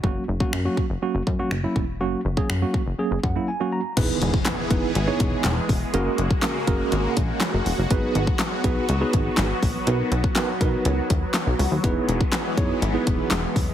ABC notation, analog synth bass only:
X:1
M:4/4
L:1/16
Q:1/4=122
K:F#mix
V:1 name="Analog synth bass" clef=bass
F,,,2 F,,,2 F,,2 z F,,, z F,,, F,,2 F,,,2 E,,,2 | F,,,2 F,,,2 F,,2 z F,,, z F,,, F,,2 z4 | E,,,2 E,,,2 z2 F,,,2 G,,,2 E,,,2 E,,,2 E,,,2 | F,,,2 F,,,2 z2 F,,,2 G,,,2 A,,,2 z F,,, E,,, F,,, |
G,,,2 G,,,2 z2 B,,,2 C,,2 G,,,2 G,,,2 A,,,2 | B,,,2 B,,,2 z2 B,,,2 C,,2 D,,2 z B,,, C,, D,, | E,,,2 E,,,2 z2 F,,,2 G,,,2 E,,,2 E,,,2 E,,,2 |]